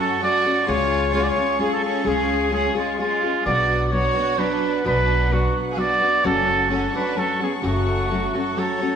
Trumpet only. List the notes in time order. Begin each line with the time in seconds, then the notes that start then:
0.00 A4
0.23 D5
0.67 C#5
1.15 C#5
1.23 D5
1.29 C#5
1.61 G#4
1.73 A4
1.84 A4
2.07 G#4
2.53 G#4
2.76 F4
3.00 F4
3.46 D5
3.87 D5
3.91 C#5
4.39 B4
4.86 B4
5.33 F#4
5.73 F5
5.79 D5
6.26 A4
6.71 A4
6.96 B4
7.18 A4
7.43 G#4
7.65 F#4
8.36 F#4
8.58 A4